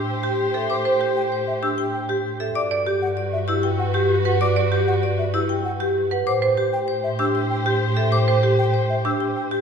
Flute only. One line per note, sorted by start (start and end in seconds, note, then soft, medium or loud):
0.08 0.14 G5 medium
0.70 0.76 D6 medium
1.17 1.23 G5 medium
1.47 1.53 E5 medium
1.63 1.69 E6 medium
1.94 2.00 G5 medium
2.55 2.61 D6 medium
3.02 3.08 F#5 medium
3.33 3.39 E5 medium
3.48 3.54 E6 medium
3.79 3.85 F#5 medium
4.41 4.47 D6 medium
4.88 4.94 F#5 medium
5.19 5.25 E5 medium
5.34 5.40 E6 medium
5.65 5.71 F#5 medium
6.27 6.33 D6 medium
6.73 6.79 G5 medium
7.04 7.10 E5 medium
7.19 7.25 E6 medium
7.50 7.56 G5 medium
8.12 8.18 D6 medium
8.59 8.65 G5 medium
8.90 8.96 E5 medium
9.05 9.11 E6 medium
9.36 9.42 G5 medium